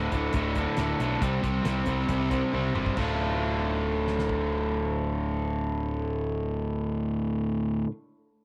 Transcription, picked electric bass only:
0.12 D1
0.34 D1
0.77 D1
1.00 B1
1.22 C2
1.44 C2
1.66 C2
1.88 C2
2.10 C2
2.54 C2
2.75 G1
2.97 D1

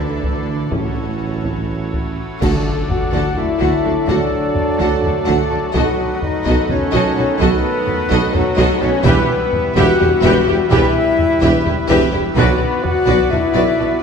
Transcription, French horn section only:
Already playing: A3 D4
0.71 C#4
2.42 A3
2.90 F#4
3.37 E4
4.09 D4
5.02 A3
5.74 F#3
6.22 D#4
6.69 C#4
7.39 B3
8.33 F#3
8.80 C#4
9.03 B3
9.75 F#4
10.70 E4
12.39 B3
12.84 F#4
13.32 E4

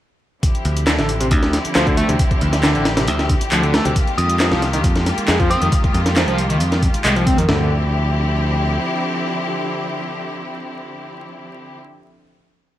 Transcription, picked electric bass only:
0.65 D2
0.99 A1
1.31 D2
1.65 muted picked electric bass stroke
1.76 D2
2.09 D2
2.42 D2
2.75 A1
3.08 D2
3.42 muted picked electric bass stroke
3.52 D2
3.86 D2
4.18 F2
4.52 C2
4.84 F2
5.18 muted picked electric bass stroke
5.28 F2
5.62 F2
5.94 F2
6.28 C2
6.61 F2
6.95 muted picked electric bass stroke
7.05 C2
7.39 F2
7.49 D2

